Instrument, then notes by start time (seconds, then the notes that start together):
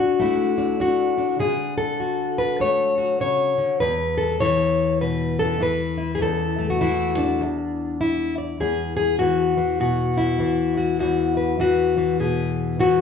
steel-string acoustic guitar
Already playing: D3 D4 F#4
0.20 A3 E4
0.58 D4
0.80 D4 F#4
1.18 D4
1.39 D3 G#4
1.78 A4
2.00 F#4
2.38 B4
2.60 A3 C#5
2.98 F#4
3.20 C#3 C#5
3.58 D3
3.80 E2 B4
4.18 A4
4.40 E3 C#5
5.01 B2 B4
5.39 A4
5.60 E3 B4
5.98 E4
6.15 G#4
6.21 E2 A4
6.59 A3
6.70 F#4
6.81 E3 E4
7.18 D4
7.41 E2
8.01 E4
8.38 D5
8.60 E2 G#4
8.97 G#4
9.19 E3 F#4
9.57 E3
9.80 B2 F#4
10.17 E4
10.40 E3
10.77 F#4
10.99 E2 F#4
11.37 B4
11.60 E3 F#4
11.97 E3
12.20 B2 G#4
12.79 E3 F#4